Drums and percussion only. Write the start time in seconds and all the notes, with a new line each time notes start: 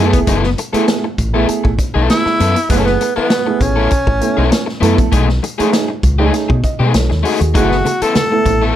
0.13 kick, closed hi-hat
0.27 kick, closed hi-hat
0.44 snare
0.58 closed hi-hat
0.74 closed hi-hat
0.88 snare, closed hi-hat
1.18 kick, closed hi-hat
1.49 closed hi-hat
1.65 kick
1.79 kick, closed hi-hat
2.10 snare, closed hi-hat
2.26 snare
2.40 closed hi-hat
2.56 closed hi-hat
2.70 kick, closed hi-hat
2.86 snare
3.01 closed hi-hat
3.30 snare, closed hi-hat
3.61 kick, closed hi-hat
3.91 kick, closed hi-hat
4.07 kick
4.21 closed hi-hat
4.52 snare, closed hi-hat
4.69 snare
4.83 closed hi-hat
4.98 kick, closed hi-hat
5.12 kick, closed hi-hat
5.29 snare
5.44 closed hi-hat
5.60 closed hi-hat
5.73 snare, closed hi-hat
6.03 kick, closed hi-hat
6.34 snare, closed hi-hat
6.50 kick
6.64 kick, closed hi-hat
6.94 snare, closed hi-hat
7.11 snare
7.25 open hi-hat
7.41 closed hi-hat
7.55 kick, closed hi-hat
7.71 snare
7.86 closed hi-hat, high conga
8.02 closed hi-hat
8.15 snare, closed hi-hat, muted conga, high conga
8.46 kick, closed hi-hat, muted conga, low conga